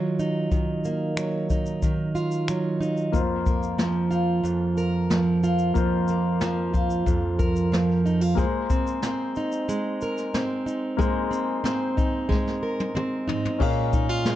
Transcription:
Already playing: steel-string acoustic guitar D#3 F#3 A#3 D#4 F4
0.19 steel-string acoustic guitar D#4, shaker
0.52 steel-string acoustic guitar D#3, kick, shaker
0.84 steel-string acoustic guitar A#3, shaker
1.17 steel-string acoustic guitar F#3, finger snap, shaker
1.50 steel-string acoustic guitar D#4, kick, shaker
1.66 shaker
1.82 steel-string acoustic guitar D#3, kick, shaker
2.15 steel-string acoustic guitar F4, shaker
2.31 shaker
2.48 steel-string acoustic guitar F#3, finger snap, shaker
2.81 steel-string acoustic guitar D#4, shaker
2.97 shaker
3.12 steel-string acoustic guitar F2, grand piano A#3 F4 C5, kick, shaker
3.46 steel-string acoustic guitar A#3, kick, shaker
3.63 shaker
3.78 steel-string acoustic guitar F3, snare, shaker
4.11 steel-string acoustic guitar F4, shaker
4.44 steel-string acoustic guitar F2, shaker
4.77 steel-string acoustic guitar A#4, shaker
5.10 steel-string acoustic guitar F3, snare, shaker
5.44 steel-string acoustic guitar F4, shaker
5.59 shaker
5.74 grand piano A#3 F4 C5, kick, shaker
6.08 steel-string acoustic guitar A#3, shaker
6.41 steel-string acoustic guitar F3, snare, shaker
6.73 steel-string acoustic guitar F4, kick, shaker
6.90 shaker
7.06 steel-string acoustic guitar F2, kick, shaker
7.39 steel-string acoustic guitar A#4, kick, shaker
7.56 shaker
7.72 steel-string acoustic guitar F3, snare, shaker
8.06 steel-string acoustic guitar D#4, shaker
8.21 steel-string acoustic guitar F4
8.35 steel-string acoustic guitar G#3, grand piano A#3 G#4 C5, kick, shaker
8.70 steel-string acoustic guitar C4, kick, shaker
8.87 shaker
9.03 steel-string acoustic guitar C4, snare, shaker
9.36 steel-string acoustic guitar D#4, shaker
9.52 shaker
9.69 steel-string acoustic guitar G#3, shaker
10.01 steel-string acoustic guitar A#4, shaker
10.18 snare, shaker
10.34 steel-string acoustic guitar C4, snare, shaker
10.66 steel-string acoustic guitar D#4, shaker
10.97 steel-string acoustic guitar G#3, grand piano A#3 G#4 C5, kick, shaker
11.31 steel-string acoustic guitar C4, shaker
11.64 steel-string acoustic guitar C4, snare, shaker
11.97 steel-string acoustic guitar D#4, kick, shaker
12.29 steel-string acoustic guitar G#3, kick, snare
12.47 snare
12.63 steel-string acoustic guitar A#4
12.80 high tom
12.95 steel-string acoustic guitar C4, mid tom
13.28 steel-string acoustic guitar D#4, floor tom
13.45 floor tom
13.59 steel-string acoustic guitar A#2, grand piano C#4 G#4 A#4, kick, crash
13.63 grand piano F5
13.93 steel-string acoustic guitar D#4, kick, shaker
14.09 steel-string acoustic guitar F4
14.25 steel-string acoustic guitar G#3, snare, shaker

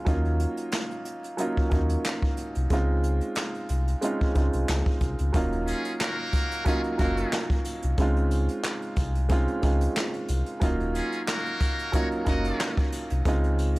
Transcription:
0.05 sub bass D#2, upright piano F#3 A#3 C#4 D#4 F4, kick, closed hi-hat
0.25 closed hi-hat
0.40 closed hi-hat
0.57 closed hi-hat
0.72 snare, clap, closed hi-hat
0.91 closed hi-hat
1.05 closed hi-hat
1.24 closed hi-hat
1.37 upright piano F#3 A#3 C#4 D#4 F4, closed hi-hat
1.57 kick
1.70 sub bass D#2, upright piano F#3 A#3 C#4 D#4 F4, kick, closed hi-hat
1.89 closed hi-hat
2.04 snare, clap, closed hi-hat
2.22 kick
2.37 closed hi-hat
2.55 sub bass C2, closed hi-hat
2.70 sub bass C#2, upright piano G#3 C4 C#4 D#4 F4, kick, closed hi-hat
3.03 closed hi-hat
3.21 closed hi-hat
3.35 snare, clap, closed hi-hat
3.54 closed hi-hat
3.69 sub bass C2, closed hi-hat
3.88 closed hi-hat
4.01 upright piano G#3 C4 C#4 D#4 F4, closed hi-hat
4.21 kick
4.34 sub bass C#2, upright piano G#3 C4 C#4 D#4 F4, kick, closed hi-hat
4.53 sub bass C2, closed hi-hat
4.68 sub bass C#2, snare, clap, closed hi-hat
4.86 kick, closed hi-hat
5.01 sub bass C2, kick, closed hi-hat
5.19 sub bass C#2, closed hi-hat
5.33 sub bass D#1, upright piano F#3 A#3 C#4 D#4 F4, kick, closed hi-hat, sleigh bells
5.53 closed hi-hat
5.66 trumpet section C#4 F4 G#4, closed hi-hat, sleigh bells
5.85 closed hi-hat
6.00 trumpet section A#3 F#4 A#4, snare, clap, sleigh bells
6.33 kick, closed hi-hat, sleigh bells
6.51 closed hi-hat
6.65 upright piano F#3 A#3 C#4 D#4 F4, trumpet section C#4 F4 G#4, kick, closed hi-hat, sleigh bells
6.84 closed hi-hat
6.98 sub bass F#1, upright piano F#3 A#3 C#4 D#4 F4, trumpet section A#3 F#4 A#4, kick, closed hi-hat, sleigh bells
7.17 closed hi-hat
7.32 snare, clap, sleigh bells
7.50 kick, closed hi-hat
7.65 closed hi-hat, sleigh bells
7.82 sub bass C2, closed hi-hat
7.98 sub bass C#2, upright piano G#3 C4 C#4 D#4 F4, kick, closed hi-hat, sleigh bells
8.16 closed hi-hat
8.31 closed hi-hat, sleigh bells
8.49 closed hi-hat
8.64 snare, clap, sleigh bells
8.82 closed hi-hat
8.96 sub bass C2, kick, closed hi-hat, sleigh bells
9.15 closed hi-hat
9.29 upright piano G#3 C4 C#4 D#4 F4, kick, closed hi-hat, sleigh bells
9.48 closed hi-hat
9.61 sub bass C#2, upright piano G#3 C4 C#4 D#4 F4, kick, closed hi-hat, sleigh bells
9.81 closed hi-hat
9.96 snare, clap, sleigh bells
10.14 closed hi-hat
10.28 sub bass C2, closed hi-hat, sleigh bells
10.46 closed hi-hat
10.60 sub bass D#1, upright piano F#3 A#3 C#4 D#4 F4, kick, closed hi-hat, sleigh bells
10.80 closed hi-hat
10.95 trumpet section C#4 F4 G#4, closed hi-hat, sleigh bells
11.12 closed hi-hat
11.28 trumpet section A#3 F#4 A#4, snare, clap, sleigh bells
11.46 closed hi-hat
11.60 kick, closed hi-hat, sleigh bells
11.79 closed hi-hat
11.92 upright piano F#3 A#3 C#4 D#4 F4, trumpet section F#4 A#4 C#5, kick, closed hi-hat, sleigh bells
12.11 closed hi-hat
12.25 sub bass F#1, upright piano F#3 A#3 C#4 D#4 F4, trumpet section F#4 A#4 D#5, kick, closed hi-hat, sleigh bells
12.45 closed hi-hat
12.60 snare, clap, sleigh bells
12.77 kick, closed hi-hat
12.92 closed hi-hat, sleigh bells
13.10 sub bass C2, closed hi-hat
13.25 sub bass C#2, upright piano G#3 C4 C#4 D#4 F4, kick, closed hi-hat, sleigh bells
13.44 closed hi-hat
13.59 closed hi-hat, sleigh bells
13.76 closed hi-hat

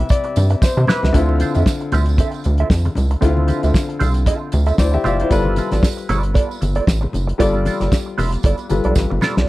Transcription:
Already playing: grand piano C3 G3 E4 B4 E5
0.09 grand piano D5, muted clean electric guitar stroke, kick, closed hi-hat, tambourine
0.24 muted clean electric guitar stroke, closed hi-hat
0.36 analog synth bass G2, closed hi-hat, tambourine, muted conga, high conga
0.50 muted clean electric guitar stroke, closed hi-hat
0.62 grand piano C5, muted clean electric guitar stroke, kick, snare, tambourine, muted conga
0.77 analog synth bass C3, muted clean electric guitar stroke, high conga
0.87 clean electric guitar E4 G4 B4 E5, grand piano B4, snare, tambourine, low conga
1.03 analog synth bass C#2, clean electric guitar E4 G4 B4 E5, snare, low conga
1.13 analog synth bass D2, grand piano D3 C4 E4 F4, clean electric guitar C4 F4 A4 E5, kick, closed hi-hat, tambourine, muted conga
1.29 high conga
1.40 clean electric guitar C4 F4 A4 F5, closed hi-hat, tambourine, high conga
1.55 analog synth bass F2, clean electric guitar C4 F4 A4 E5, closed hi-hat, tambourine, high conga
1.66 kick, snare, tambourine, muted conga
1.80 muted clean electric guitar stroke, closed hi-hat
1.92 analog synth bass D2, clean electric guitar C4 F4 A4 E5, closed hi-hat, tambourine, muted conga, high conga, low conga
2.06 muted clean electric guitar stroke, closed hi-hat, tambourine
2.17 clean electric guitar C4 F4 A4 E5, kick, closed hi-hat, tambourine, muted conga
2.31 muted clean electric guitar stroke, closed hi-hat, tambourine
2.44 analog synth bass D2, muted clean electric guitar stroke, closed hi-hat, tambourine, high conga
2.58 clean electric guitar C4 F4 A4 E5, closed hi-hat
2.70 analog synth bass F2, muted clean electric guitar stroke, kick, snare, tambourine, muted conga
2.85 muted clean electric guitar stroke, closed hi-hat, high conga
2.95 analog synth bass C#2, closed hi-hat, tambourine, muted conga, low conga
3.11 muted clean electric guitar stroke, closed hi-hat
3.21 analog synth bass D2, grand piano D3 C4 E4 F4, clean electric guitar C4 F4 A4 E5, kick, closed hi-hat, tambourine
3.37 high conga
3.47 clean electric guitar C4 F4 A4 E5, closed hi-hat, tambourine, muted conga, high conga
3.63 analog synth bass D2, clean electric guitar C4 F4 A4 E5, closed hi-hat, tambourine, high conga
3.74 kick, snare, tambourine, muted conga
3.89 muted clean electric guitar stroke, closed hi-hat
3.99 analog synth bass C2, clean electric guitar C4 F4 A4 F5, closed hi-hat, tambourine, muted conga, high conga, low conga
4.14 muted clean electric guitar stroke, closed hi-hat, tambourine
4.26 clean electric guitar C4 F4 A4 E5, kick, closed hi-hat, tambourine
4.40 muted clean electric guitar stroke
4.52 analog synth bass D2, muted clean electric guitar stroke, closed hi-hat, tambourine, muted conga, high conga
4.66 clean electric guitar C4 F4 A4 E5, closed hi-hat, tambourine
4.78 analog synth bass D2, grand piano E4 C5 D5, muted clean electric guitar stroke, kick, snare, tambourine, muted conga
4.92 grand piano G4 E5, muted clean electric guitar stroke, high conga
5.04 analog synth bass F#1, clean electric guitar C4 F4 A4 E5, grand piano F4 D5 F5, closed hi-hat, tambourine, muted conga, low conga
5.19 clean electric guitar C4 F4 A4 E5, grand piano E4 C5, closed hi-hat
5.29 analog synth bass G1, grand piano G3 F4 A4 B4, clean electric guitar B3 F4 A4 D5, kick, closed hi-hat, tambourine, muted conga
5.45 high conga
5.56 clean electric guitar B3 F4 A4 E5, closed hi-hat, tambourine, muted conga, high conga
5.71 analog synth bass A1, clean electric guitar B3 F4 A4 D5, snare, closed hi-hat, tambourine, high conga
5.83 kick, snare, tambourine
5.97 muted clean electric guitar stroke, closed hi-hat
6.09 analog synth bass G1, clean electric guitar B3 F4 A4 D5, closed hi-hat, tambourine, high conga, low conga
6.23 muted clean electric guitar stroke, closed hi-hat
6.34 clean electric guitar B3 F4 A4 D5, kick, closed hi-hat, tambourine, muted conga
6.51 muted clean electric guitar stroke, tambourine
6.61 analog synth bass G1, muted clean electric guitar stroke, closed hi-hat, tambourine, high conga
6.75 clean electric guitar B3 F4 A4 D5, closed hi-hat
6.87 analog synth bass A1, muted clean electric guitar stroke, kick, snare, tambourine
7.01 muted clean electric guitar stroke, high conga
7.13 analog synth bass F#1, closed hi-hat, tambourine, muted conga, low conga
7.27 muted clean electric guitar stroke, closed hi-hat
7.38 analog synth bass G1, grand piano G3 F4 A4 D5, clean electric guitar B3 F4 A4 D5, kick, closed hi-hat, tambourine
7.54 high conga
7.65 clean electric guitar B3 F4 A4 D5, closed hi-hat, tambourine, muted conga, high conga
7.80 analog synth bass G1, clean electric guitar B3 F4 A4 D5, snare, closed hi-hat, tambourine, high conga
7.92 kick, snare, tambourine
8.06 muted clean electric guitar stroke
8.18 analog synth bass F1, clean electric guitar B3 F4 A4 E5, open hi-hat, tambourine, muted conga, high conga, low conga
8.32 muted clean electric guitar stroke, closed hi-hat, tambourine
8.43 analog synth bass G1, clean electric guitar B3 F4 A4 D5, kick, closed hi-hat, tambourine, muted conga
8.58 muted clean electric guitar stroke, closed hi-hat, tambourine
8.69 analog synth bass G1, grand piano G3 F4 A4 B4, muted clean electric guitar stroke, closed hi-hat, tambourine, muted conga, high conga
8.84 analog synth bass B1, clean electric guitar B3 F4 A4 D5, closed hi-hat
8.95 analog synth bass A1, muted clean electric guitar stroke, kick, snare, tambourine, muted conga
9.10 analog synth bass G1, muted clean electric guitar stroke, high conga
9.21 clean electric guitar B3 F4 A4 D5, snare, tambourine, low conga
9.37 analog synth bass B1, clean electric guitar B3 F4 A4 D5, snare

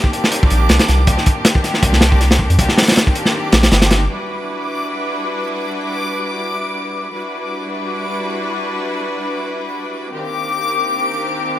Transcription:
Already playing: string section D#3 A#3 C4 D4 G4, synth texture D6
0.04 kick
0.13 closed hi-hat
0.24 snare
0.32 closed hi-hat
0.43 kick
0.50 sub bass A#1, closed hi-hat
0.69 sub bass C2, snare, closed hi-hat
0.79 snare, closed hi-hat
0.89 sub bass C2, snare, closed hi-hat
1.07 sub bass C2, string section D#3 A#3 C4 D4 G4, kick, closed hi-hat
1.18 snare
1.26 kick, closed hi-hat
1.36 string section D#3 A#3 C4 D4 G4
1.45 snare, closed hi-hat
1.55 kick
1.64 snare, closed hi-hat
1.74 snare
1.83 sub bass C2, kick, closed hi-hat
1.93 snare
2.01 snare, closed hi-hat
2.12 kick
2.21 snare, closed hi-hat
2.31 snare, closed hi-hat
2.39 kick
2.50 sub bass F2, closed hi-hat
2.58 sub bass C2, string section D#3 A#3 C4 D4 G4, kick, closed hi-hat
2.69 snare
2.78 snare, closed hi-hat
2.82 snare, closed hi-hat
2.87 string section D#3 A#3 C4 D4 G4, snare, closed hi-hat
2.92 snare, closed hi-hat
2.96 snare, closed hi-hat
3.07 kick
3.15 closed hi-hat
3.25 snare
3.52 sub bass A#1, snare, closed hi-hat
3.63 snare, closed hi-hat
3.72 sub bass G1, snare, closed hi-hat
3.82 string section D#3 A#3 C4 D4 G4, snare, closed hi-hat
3.91 string section D#3 A#3 C4 D4 G4, snare, closed hi-hat
4.09 string section G3 D4 E4 F#4 B4, synth texture D6
7.11 string section G3 D4 E4 F#4 B4
10.13 string section D#3 A#3 C4 D4 G4

